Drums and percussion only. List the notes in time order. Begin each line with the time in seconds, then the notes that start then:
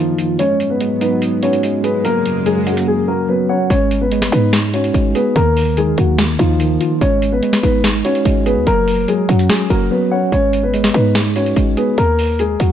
0.19 closed hi-hat
0.39 closed hi-hat
0.60 closed hi-hat
0.81 closed hi-hat
1.01 closed hi-hat
1.22 closed hi-hat
1.43 closed hi-hat
1.53 closed hi-hat
1.63 closed hi-hat
1.84 closed hi-hat
2.05 closed hi-hat
2.26 closed hi-hat
2.46 closed hi-hat
2.67 closed hi-hat
2.77 closed hi-hat
3.70 closed hi-hat
3.91 closed hi-hat
4.12 closed hi-hat
4.22 snare
4.32 closed hi-hat
4.53 snare, closed hi-hat
4.74 closed hi-hat
4.84 closed hi-hat
4.94 closed hi-hat
5.15 closed hi-hat
5.36 closed hi-hat
5.57 open hi-hat
5.77 closed hi-hat
5.98 closed hi-hat
6.18 snare, closed hi-hat
6.39 closed hi-hat
6.60 closed hi-hat
6.81 closed hi-hat
7.01 closed hi-hat
7.22 closed hi-hat
7.43 closed hi-hat
7.53 snare
7.63 closed hi-hat
7.84 snare, closed hi-hat
8.05 closed hi-hat
8.15 closed hi-hat
8.25 closed hi-hat
8.46 closed hi-hat
8.67 closed hi-hat
8.88 open hi-hat
9.08 closed hi-hat
9.29 closed hi-hat
9.39 closed hi-hat
9.49 snare, closed hi-hat
9.70 closed hi-hat
10.32 closed hi-hat
10.53 closed hi-hat
10.74 closed hi-hat
10.84 snare
10.94 closed hi-hat
11.15 snare, closed hi-hat
11.36 closed hi-hat
11.46 closed hi-hat
11.56 closed hi-hat
11.77 closed hi-hat
11.98 closed hi-hat
12.19 open hi-hat
12.39 closed hi-hat
12.60 closed hi-hat